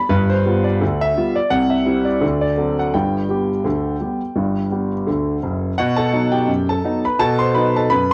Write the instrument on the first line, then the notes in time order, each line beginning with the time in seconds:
grand piano
Already playing: B5
0.09 G1 G2 B4
0.30 C5
0.46 G3 B3 F4
0.64 D5
0.81 D2 D3
1.01 E5
1.17 G3 B3 F4
1.36 D5
1.50 C2 C3 F#5
1.70 E5
1.86 G3 C4 E4
2.05 D5
2.21 D2 D3
2.41 D5
2.57 F#3 C4 A4
2.79 F#5
2.94 G1 G2 G5
3.29 G3 B3 G4
3.64 D2 D3
4.00 G3 B3 G4
4.36 G1 G2
4.71 G3 B3 G4
5.07 D2 D3
5.43 F#1 F#2
5.78 B2 F#4 F#5
5.96 A4 A5
6.13 F#3 B3 D#4
6.32 G4 G5
6.47 F#2
6.69 A4 A5
6.84 F#3 B3 D#4
7.05 B4 B5
7.19 B2 A4 A5
7.39 C5 C6
7.54 F#3 B3 D#4 B4 B5
7.76 A4 A5
7.90 F#2 B4 B5